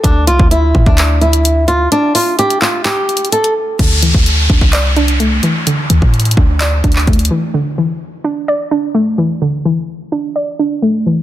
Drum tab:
CC |------------------------------------------------------------------------------------------------|------------------------------------------------------------------------------------------------|x-----------------------------------------------------------------------------------------------|------------------------------------------------------------------------------------------------|
HH |x-----------x-----------x-----------------------x-----------x-----x-----x-----------x-----------|x-----------o-----------x-----x-----------------x-----------x---x---x---x-----x-----------------|x-----------x-----------x-----------------------x-----------x-----x-----x-----------x-----------|x-----------x-----------x--x--x--x--------------x-----------x---x---x---x--x--x--x--------------|
CP |------------------------------------------------x-----------------------------------------------|------------------------------------x-----------x-----------------------------------------------|------------------------------------------------x-----------------------------------------------|------------------------------------------------x-----------------x-----------------------------|
BD |o-----------------o-----------------o-----o-----------------------------------------------------|------------------------------------------------------------------------------------------------|o-----------------o-----------------o-----o-----------------------------------------------------|------------------o-----------------o-----------------------o-----------o-----------------------|

CC |------------------------------------------------------------------------------------------------|------------------------------------------------------------------------------------------------|
HH |------------------------------------------------------------------------------------------------|------------------------------------------------------------------------------------------------|
CP |------------------------------------------------------------------------------------------------|------------------------------------------------------------------------------------------------|
BD |------------------------------------------------------------------------------------------------|------------------------------------------------------------------------------------------------|